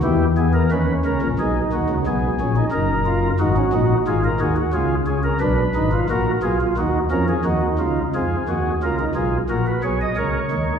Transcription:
<<
  \new Staff \with { instrumentName = "Pipe organ" } { \time 4/4 \key gis \minor \tempo 4 = 89 << { g'8 gis'16 bes'16 b'8 bes'8 gis'8 fis'8 gis'4 | ais'4 fis'4 gis'16 ais'16 gis'16 fis'16 eis'8 gis'16 ais'16 | b'4 ais'8 aes'16 f'16 fis'8 ais'16 gis'16 fis'8 eis'8 | gis'4 ais'8 gis'8 ais'16 b'16 cis''16 dis''16 cis''4 | } \\ { e'8 b8 des'4 dis'4 b8 cis'16 dis'16 | dis'8 eis'8 dis'16 cis'16 dis'8 eis'8 fis'8 gis'8 cis'8 | d'8 dis'16 f'16 fis'8 f'8 dis'8 cis'8 dis'4 | eis'8 fis'8 eis'16 dis'16 eis'8 fis'8 gis'8 ais'8 dis'8 | } >> }
  \new Staff \with { instrumentName = "Pipe organ" } { \clef bass \time 4/4 \key gis \minor <e, e>4 <dis, dis>8 <des, des>16 <bes,, bes,>16 <b,, b,>8 <dis, dis>16 <cis, cis>16 <b,, b,>8 <ais,, ais,>8 | <fis,, fis,>4 <gis,, gis,>8 <ais,, ais,>8 <gis,, gis,>8 <dis, dis>8 <cis, cis>4 | <b,, b,>8 <aes,, aes,>8 <ais,, ais,>8 <b,, b,>8 <dis, dis>8 <eis, eis>8 <dis, dis>8 <cis, cis>8 | <eis, eis>8 <dis, dis>8 <cis, cis>8 <b,, b,>8 <ais,, ais,>8 <b,, b,>8 <cis, cis>8 <dis, dis>8 | }
>>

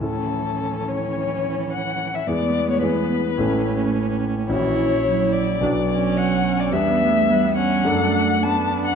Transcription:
<<
  \new Staff \with { instrumentName = "Violin" } { \time 4/4 \key a \mixolydian \tempo 4 = 108 a'4. cis''4. fis''8. e''16 | d''8. cis''16 b'2~ b'8 r8 | cis''4. d''4. fis''8. d''16 | e''4. fis''4. a''8. fis''16 | }
  \new Staff \with { instrumentName = "Grand piano" } { \time 4/4 \key a \mixolydian <a, cis' e' a'>1 | <e, b e' gis'>4 <e, b e' gis'>4 <a,, cis' e' a'>2 | <ais,, cis' e' fis'>2 <b,, b d' fis'>2 | <e, b d' g'>2 <fis, a d' a'>2 | }
  \new Staff \with { instrumentName = "Viola" } { \time 4/4 \key a \mixolydian cis'1 | b2 cis'2 | e'2 d'8 cis'4. | b4 b8 cis'8 d'4 d'4 | }
  \new Staff \with { instrumentName = "Cello" } { \clef bass \time 4/4 \key a \mixolydian e1 | gis2 a2 | e4 fis4 fis2 | g8 a8 g4 a4 b4 | }
>>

